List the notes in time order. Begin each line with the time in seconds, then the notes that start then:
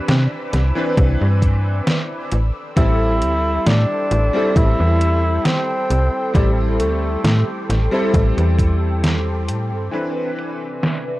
Already playing: E3 C4 D4 B4 D5 B5 D6 E6
0.08 C3, snare, closed hi-hat
0.53 C2, snare, closed hi-hat
0.75 E3 C4 D4 B4
0.97 C2, kick, closed hi-hat
1.21 G2
1.42 kick, closed hi-hat
1.87 snare, closed hi-hat
2.32 A1 A4 G5 C6, closed hi-hat
2.76 A1 G3 C4 E4 A4, kick, closed hi-hat
3.22 D2, closed hi-hat
3.67 A2 D4, snare, closed hi-hat
4.11 A1, closed hi-hat
4.33 G3 C4 E4 A4
4.56 A1 E4, kick, closed hi-hat
4.80 E2
5.01 closed hi-hat
5.45 C4, snare, closed hi-hat
5.90 C2 D6, closed hi-hat
6.34 A1 G3 C4 E4 A4, kick, closed hi-hat
6.79 D2 A3, closed hi-hat
7.24 A2, snare, closed hi-hat
7.69 A1, snare, closed hi-hat
7.91 G3 C4 E4 A4
8.14 A1, kick, closed hi-hat
8.37 E2, closed hi-hat
8.59 kick, closed hi-hat
9.04 snare, closed hi-hat
9.49 A2, closed hi-hat
9.72 G2
9.91 C3 E3 C4 D4 B4 D5 E5, closed hi-hat
10.38 closed hi-hat
10.83 snare, closed hi-hat